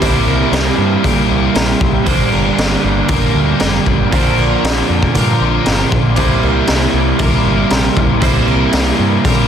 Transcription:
Already playing: G4
0.01 C2 C3 G3 A#3 E4 C5, kick, open hi-hat
0.25 C2 A#4
0.52 C2, snare, open hi-hat
0.78 G2
1.03 A#2 C3 G3 A#3 E4 A#4, kick, open hi-hat
1.30 C2
1.55 A#1 G4, snare, open hi-hat
1.81 C2, kick
2.06 G1 G2 D3 G3 A#3 D4 C5, kick, open hi-hat
2.32 G1 A#4
2.58 G1, snare, open hi-hat
2.84 G1
3.08 G1 G2 D3 G3 A#3 D4 A#4, kick, open hi-hat
3.35 D2
3.60 F1 G4, snare, open hi-hat
3.86 G1, kick
4.12 A#1 A#2 D3 F3 A#3 D4 C5, kick, open hi-hat
4.38 A#1 A#4
4.64 A#1, snare, open hi-hat
4.90 F2
5.03 kick
5.15 G2 A#2 D3 F3 A#3 D4 A#4, kick, open hi-hat
5.41 A#1
5.66 G1 G4, snare, open hi-hat
5.92 A#1, kick
6.15 C2 C3 G3 A#3 C5, kick, open hi-hat
6.20 E4
6.43 C2 A#4
6.67 C2, snare, open hi-hat
6.94 C2
7.19 C2 C3 G3 A#3 E4 A#4, kick, open hi-hat
7.45 G1
7.70 A#1 G4, snare, open hi-hat
7.97 C2, kick
8.20 C2 C3 G3 A#3 E4 C5, kick, open hi-hat
8.47 C2 A#4
8.73 C2, snare, open hi-hat
8.99 G2
9.24 A#2 C3 G3 A#3 E4 A#4, kick, open hi-hat

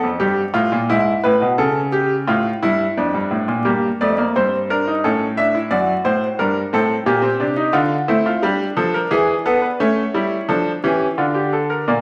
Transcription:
0.03 F2
0.20 G2 G4
0.54 A2 F4
0.72 A#2
0.89 G#2 E4
1.23 A2 B4
1.41 B2
1.58 C#3 A4
1.92 G4
2.27 A2 F4
2.62 G2 E4
2.97 F2 D4
3.14 G2
3.31 A2
3.48 A#2
3.65 G2 A#3 G4
4.01 F2 A3 D5
4.18 A#3
4.36 G2 C4 C5
4.70 D4 A#4
4.87 D#4
5.04 A2 C#4 A4
5.37 D4 E5
5.55 E4
5.71 F#2 F#4 D5
6.04 A2 C5
6.39 G2 D4 A#4
6.73 A2 C4 A4
7.06 A#2 A#3 G4
7.22 C4
7.40 C3 D4
7.57 D#4
7.73 D3 D4 F4
8.08 A3 C4 E4
8.26 F4
8.42 G3 D4 G4
8.77 F3 A4
8.94 A#4
9.11 E3 G#4
9.46 B3 A4
9.62 B4
9.80 A3 C#4 C#5
10.14 G3 E4
10.49 F3 D4 A4
10.84 E3 C#4 G4
11.18 D3 D4 F4
11.35 G4
11.53 A4
11.70 A#4
11.88 A#2 A#3 D5

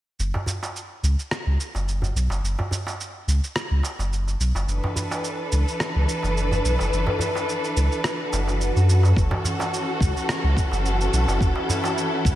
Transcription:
0.19 F#1, cabasa
0.34 darbuka tek, darbuka dum
0.46 darbuka dum, cabasa
0.63 darbuka tek, cabasa
0.76 cabasa
1.03 C#2, cabasa
1.19 cabasa
1.31 cross-stick, cabasa
1.46 C#2
1.60 cabasa
1.75 F#1, darbuka ka, cabasa
1.88 cabasa
2.02 darbuka dum, cabasa
2.15 B1, cabasa
2.30 F#1, darbuka tek, cabasa
2.43 F#1, cabasa
2.59 darbuka tek, darbuka dum
2.71 darbuka dum, cabasa
2.87 darbuka tek, cabasa
3.00 cabasa
3.27 C#2, cabasa
3.44 cabasa
3.56 cross-stick, cabasa
3.71 C#2
3.83 darbuka ka, cabasa
3.99 F#1, darbuka ka, cabasa
4.13 cabasa
4.27 darbuka ka, cabasa
4.40 B1, cabasa
4.55 F#1, darbuka ka, darbuka tek, cabasa
4.67 F#1 E3 D4 A4 B4, cabasa
4.84 darbuka tek, darbuka dum
4.96 darbuka dum, cabasa
5.11 darbuka tek, cabasa
5.24 cabasa
5.52 C#2, cabasa
5.68 cabasa
5.80 cross-stick, cabasa
5.95 C#2
6.09 cabasa
6.23 F#1, darbuka ka, cabasa
6.37 cabasa
6.51 darbuka dum, cabasa
6.64 B1, cabasa
6.79 F#1, darbuka tek, cabasa
6.93 F#1, cabasa
7.07 darbuka tek, darbuka dum
7.19 darbuka dum, cabasa
7.35 darbuka tek, cabasa
7.49 cabasa
7.64 cabasa
7.76 C#2, cabasa
7.92 cabasa
8.04 cross-stick, swell, cabasa
8.33 F#1, darbuka ka, cabasa
8.47 darbuka ka, cabasa
8.61 cabasa
8.76 F#2, darbuka ka, cabasa
8.89 cabasa
9.03 darbuka ka, darbuka tek, cabasa
9.15 F#1 E3 C#4 F#4 A4 F#5, kick, cabasa
9.31 darbuka tek, darbuka dum
9.44 darbuka dum, cabasa
9.60 darbuka tek, cabasa
9.74 cabasa
10.01 C#2, kick, cabasa
10.17 cabasa
10.29 cross-stick, cabasa
10.44 C#2
10.57 kick, cabasa
10.71 F#1, darbuka ka, cabasa
10.86 cabasa
11.01 cabasa
11.13 B1, cabasa
11.27 F#1, darbuka tek, cabasa
11.41 F#1 E4, kick, cabasa
11.56 darbuka tek
11.69 darbuka dum, cabasa
11.84 darbuka tek, cabasa
11.98 cabasa
12.25 C#2, kick, cabasa

